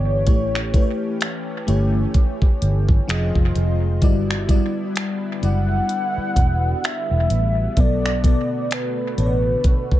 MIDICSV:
0, 0, Header, 1, 7, 480
1, 0, Start_track
1, 0, Tempo, 937500
1, 138, Time_signature, 4, 2, 24, 8
1, 5119, End_track
2, 0, Start_track
2, 0, Title_t, "Soft synth lead"
2, 0, Program_c, 0, 80
2, 0, Note_on_c, 0, 73, 107
2, 864, Note_off_c, 0, 73, 0
2, 2789, Note_on_c, 0, 78, 127
2, 3512, Note_on_c, 0, 76, 104
2, 3520, Note_off_c, 0, 78, 0
2, 3994, Note_on_c, 0, 74, 105
2, 4001, Note_off_c, 0, 76, 0
2, 4472, Note_on_c, 0, 71, 90
2, 4479, Note_off_c, 0, 74, 0
2, 5119, Note_off_c, 0, 71, 0
2, 5119, End_track
3, 0, Start_track
3, 0, Title_t, "FM electric piano"
3, 0, Program_c, 1, 5
3, 0, Control_c, 1, 64, 127
3, 134, Note_on_c, 1, 57, 71
3, 139, Note_on_c, 1, 64, 64
3, 143, Note_on_c, 1, 67, 60
3, 145, Control_c, 1, 64, 0
3, 147, Note_on_c, 1, 73, 76
3, 247, Control_c, 1, 64, 127
3, 362, Note_off_c, 1, 57, 0
3, 364, Note_off_c, 1, 64, 0
3, 366, Note_off_c, 1, 67, 0
3, 368, Note_off_c, 1, 73, 0
3, 375, Note_on_c, 1, 57, 72
3, 379, Note_on_c, 1, 64, 65
3, 384, Note_on_c, 1, 67, 64
3, 388, Note_on_c, 1, 71, 64
3, 421, Note_off_c, 1, 71, 0
3, 422, Note_on_c, 1, 73, 80
3, 828, Note_off_c, 1, 57, 0
3, 830, Note_off_c, 1, 64, 0
3, 833, Note_off_c, 1, 67, 0
3, 852, Note_off_c, 1, 73, 0
3, 854, Note_on_c, 1, 57, 85
3, 858, Note_on_c, 1, 64, 72
3, 863, Note_on_c, 1, 67, 73
3, 867, Note_on_c, 1, 73, 90
3, 1574, Note_on_c, 1, 53, 91
3, 1576, Note_off_c, 1, 57, 0
3, 1578, Note_off_c, 1, 64, 0
3, 1579, Note_on_c, 1, 65, 89
3, 1580, Note_off_c, 1, 67, 0
3, 1582, Note_off_c, 1, 73, 0
3, 1583, Note_on_c, 1, 68, 85
3, 1586, Control_c, 1, 64, 0
3, 1587, Note_on_c, 1, 75, 105
3, 1661, Control_c, 1, 64, 127
3, 2028, Note_off_c, 1, 53, 0
3, 2030, Note_off_c, 1, 65, 0
3, 2032, Note_off_c, 1, 68, 0
3, 2034, Note_off_c, 1, 75, 0
3, 2055, Note_on_c, 1, 55, 81
3, 2059, Note_on_c, 1, 64, 74
3, 2063, Note_on_c, 1, 66, 74
3, 2065, Control_c, 1, 64, 0
3, 2068, Note_on_c, 1, 74, 96
3, 2167, Control_c, 1, 64, 127
3, 2282, Note_off_c, 1, 55, 0
3, 2284, Note_off_c, 1, 64, 0
3, 2286, Note_off_c, 1, 66, 0
3, 2289, Note_off_c, 1, 74, 0
3, 2294, Note_on_c, 1, 55, 86
3, 2298, Note_on_c, 1, 64, 79
3, 2303, Note_on_c, 1, 66, 80
3, 2307, Note_on_c, 1, 74, 95
3, 2748, Note_off_c, 1, 55, 0
3, 2750, Note_off_c, 1, 64, 0
3, 2752, Note_off_c, 1, 66, 0
3, 2754, Note_off_c, 1, 74, 0
3, 2775, Note_on_c, 1, 55, 68
3, 2779, Note_on_c, 1, 64, 66
3, 2783, Note_on_c, 1, 66, 62
3, 2788, Note_on_c, 1, 74, 74
3, 3680, Note_off_c, 1, 55, 0
3, 3682, Note_off_c, 1, 64, 0
3, 3684, Note_off_c, 1, 66, 0
3, 3686, Note_off_c, 1, 74, 0
3, 3976, Note_on_c, 1, 47, 69
3, 3981, Note_on_c, 1, 59, 64
3, 3985, Control_c, 1, 64, 0
3, 3985, Note_on_c, 1, 69, 63
3, 3989, Note_on_c, 1, 74, 80
3, 4078, Control_c, 1, 64, 127
3, 4203, Note_off_c, 1, 47, 0
3, 4205, Note_off_c, 1, 59, 0
3, 4207, Note_off_c, 1, 69, 0
3, 4209, Note_off_c, 1, 74, 0
3, 4218, Note_on_c, 1, 47, 74
3, 4222, Note_on_c, 1, 59, 65
3, 4227, Note_on_c, 1, 69, 66
3, 4230, Note_on_c, 1, 74, 81
3, 4670, Note_off_c, 1, 47, 0
3, 4672, Note_off_c, 1, 59, 0
3, 4674, Note_off_c, 1, 69, 0
3, 4676, Note_off_c, 1, 74, 0
3, 4696, Note_on_c, 1, 47, 69
3, 4700, Note_on_c, 1, 59, 64
3, 4704, Note_on_c, 1, 69, 64
3, 4709, Note_on_c, 1, 73, 61
3, 4742, Note_off_c, 1, 73, 0
3, 4742, Note_on_c, 1, 74, 75
3, 5119, Note_off_c, 1, 47, 0
3, 5119, Note_off_c, 1, 59, 0
3, 5119, Note_off_c, 1, 69, 0
3, 5119, Note_off_c, 1, 74, 0
3, 5119, End_track
4, 0, Start_track
4, 0, Title_t, "Analog synth pad"
4, 0, Program_c, 2, 89
4, 0, Note_on_c, 2, 52, 72
4, 0, Note_on_c, 2, 59, 61
4, 0, Note_on_c, 2, 62, 62
4, 0, Note_on_c, 2, 67, 79
4, 118, Note_off_c, 2, 59, 0
4, 118, Note_off_c, 2, 62, 0
4, 141, Note_on_c, 2, 61, 62
4, 142, Note_on_c, 2, 57, 64
4, 1556, Note_off_c, 2, 52, 0
4, 1556, Note_off_c, 2, 67, 0
4, 1565, Note_off_c, 2, 57, 0
4, 1565, Note_off_c, 2, 61, 0
4, 1579, Note_on_c, 2, 51, 72
4, 1579, Note_on_c, 2, 65, 77
4, 1580, Note_on_c, 2, 56, 68
4, 1580, Note_on_c, 2, 60, 69
4, 2053, Note_off_c, 2, 65, 0
4, 2054, Note_off_c, 2, 51, 0
4, 2054, Note_off_c, 2, 56, 0
4, 2054, Note_off_c, 2, 60, 0
4, 2057, Note_on_c, 2, 50, 75
4, 2057, Note_on_c, 2, 55, 68
4, 2057, Note_on_c, 2, 59, 61
4, 2059, Note_on_c, 2, 64, 82
4, 3958, Note_off_c, 2, 55, 0
4, 3959, Note_off_c, 2, 64, 0
4, 3976, Note_on_c, 2, 66, 80
4, 3978, Note_on_c, 2, 57, 65
4, 5119, Note_off_c, 2, 50, 0
4, 5119, Note_off_c, 2, 57, 0
4, 5119, Note_off_c, 2, 59, 0
4, 5119, Note_off_c, 2, 66, 0
4, 5119, End_track
5, 0, Start_track
5, 0, Title_t, "Fingered electric bass"
5, 0, Program_c, 3, 33
5, 0, Note_on_c, 3, 31, 85
5, 139, Note_off_c, 3, 31, 0
5, 139, Note_on_c, 3, 33, 109
5, 431, Note_off_c, 3, 33, 0
5, 860, Note_on_c, 3, 31, 89
5, 1044, Note_off_c, 3, 31, 0
5, 1341, Note_on_c, 3, 31, 86
5, 1525, Note_off_c, 3, 31, 0
5, 1580, Note_on_c, 3, 29, 99
5, 1687, Note_off_c, 3, 29, 0
5, 1719, Note_on_c, 3, 29, 84
5, 1796, Note_off_c, 3, 29, 0
5, 1822, Note_on_c, 3, 29, 90
5, 2059, Note_off_c, 3, 29, 0
5, 2059, Note_on_c, 3, 31, 113
5, 2352, Note_off_c, 3, 31, 0
5, 2780, Note_on_c, 3, 30, 81
5, 2964, Note_off_c, 3, 30, 0
5, 3259, Note_on_c, 3, 28, 92
5, 3444, Note_off_c, 3, 28, 0
5, 3640, Note_on_c, 3, 28, 85
5, 3717, Note_off_c, 3, 28, 0
5, 3740, Note_on_c, 3, 33, 92
5, 3924, Note_off_c, 3, 33, 0
5, 3979, Note_on_c, 3, 35, 104
5, 4272, Note_off_c, 3, 35, 0
5, 4699, Note_on_c, 3, 33, 90
5, 4884, Note_off_c, 3, 33, 0
5, 5119, End_track
6, 0, Start_track
6, 0, Title_t, "Muted fingered electric bass strokes"
6, 1238, Note_on_c, 9, 29, 48
6, 1289, Note_off_c, 9, 29, 0
6, 3161, Note_on_c, 9, 29, 48
6, 3212, Note_off_c, 9, 29, 0
6, 5078, Note_on_c, 9, 29, 47
6, 5119, Note_off_c, 9, 29, 0
6, 5119, End_track
7, 0, Start_track
7, 0, Title_t, "Drums"
7, 136, Note_on_c, 9, 42, 61
7, 138, Note_on_c, 9, 36, 102
7, 187, Note_off_c, 9, 42, 0
7, 189, Note_off_c, 9, 36, 0
7, 283, Note_on_c, 9, 26, 68
7, 334, Note_off_c, 9, 26, 0
7, 378, Note_on_c, 9, 36, 95
7, 380, Note_on_c, 9, 42, 60
7, 429, Note_off_c, 9, 36, 0
7, 431, Note_off_c, 9, 42, 0
7, 618, Note_on_c, 9, 42, 64
7, 625, Note_on_c, 9, 26, 108
7, 669, Note_off_c, 9, 42, 0
7, 676, Note_off_c, 9, 26, 0
7, 860, Note_on_c, 9, 42, 58
7, 911, Note_off_c, 9, 42, 0
7, 1097, Note_on_c, 9, 42, 67
7, 1098, Note_on_c, 9, 36, 97
7, 1149, Note_off_c, 9, 42, 0
7, 1150, Note_off_c, 9, 36, 0
7, 1238, Note_on_c, 9, 36, 94
7, 1289, Note_off_c, 9, 36, 0
7, 1341, Note_on_c, 9, 42, 68
7, 1392, Note_off_c, 9, 42, 0
7, 1478, Note_on_c, 9, 36, 87
7, 1529, Note_off_c, 9, 36, 0
7, 1584, Note_on_c, 9, 42, 57
7, 1588, Note_on_c, 9, 26, 115
7, 1635, Note_off_c, 9, 42, 0
7, 1639, Note_off_c, 9, 26, 0
7, 1718, Note_on_c, 9, 36, 92
7, 1769, Note_off_c, 9, 36, 0
7, 1820, Note_on_c, 9, 42, 55
7, 1871, Note_off_c, 9, 42, 0
7, 2057, Note_on_c, 9, 42, 57
7, 2058, Note_on_c, 9, 36, 96
7, 2108, Note_off_c, 9, 42, 0
7, 2109, Note_off_c, 9, 36, 0
7, 2204, Note_on_c, 9, 26, 68
7, 2256, Note_off_c, 9, 26, 0
7, 2298, Note_on_c, 9, 36, 93
7, 2299, Note_on_c, 9, 42, 65
7, 2349, Note_off_c, 9, 36, 0
7, 2351, Note_off_c, 9, 42, 0
7, 2538, Note_on_c, 9, 42, 62
7, 2545, Note_on_c, 9, 26, 107
7, 2589, Note_off_c, 9, 42, 0
7, 2596, Note_off_c, 9, 26, 0
7, 2780, Note_on_c, 9, 42, 54
7, 2831, Note_off_c, 9, 42, 0
7, 3017, Note_on_c, 9, 42, 69
7, 3068, Note_off_c, 9, 42, 0
7, 3258, Note_on_c, 9, 36, 86
7, 3260, Note_on_c, 9, 42, 68
7, 3309, Note_off_c, 9, 36, 0
7, 3311, Note_off_c, 9, 42, 0
7, 3503, Note_on_c, 9, 42, 57
7, 3507, Note_on_c, 9, 26, 110
7, 3554, Note_off_c, 9, 42, 0
7, 3558, Note_off_c, 9, 26, 0
7, 3739, Note_on_c, 9, 42, 55
7, 3790, Note_off_c, 9, 42, 0
7, 3977, Note_on_c, 9, 42, 62
7, 3978, Note_on_c, 9, 36, 101
7, 4028, Note_off_c, 9, 42, 0
7, 4029, Note_off_c, 9, 36, 0
7, 4125, Note_on_c, 9, 26, 65
7, 4176, Note_off_c, 9, 26, 0
7, 4218, Note_on_c, 9, 36, 91
7, 4221, Note_on_c, 9, 42, 65
7, 4269, Note_off_c, 9, 36, 0
7, 4272, Note_off_c, 9, 42, 0
7, 4459, Note_on_c, 9, 42, 66
7, 4466, Note_on_c, 9, 26, 107
7, 4510, Note_off_c, 9, 42, 0
7, 4517, Note_off_c, 9, 26, 0
7, 4700, Note_on_c, 9, 42, 57
7, 4751, Note_off_c, 9, 42, 0
7, 4936, Note_on_c, 9, 42, 69
7, 4938, Note_on_c, 9, 36, 99
7, 4988, Note_off_c, 9, 42, 0
7, 4989, Note_off_c, 9, 36, 0
7, 5077, Note_on_c, 9, 36, 84
7, 5119, Note_off_c, 9, 36, 0
7, 5119, End_track
0, 0, End_of_file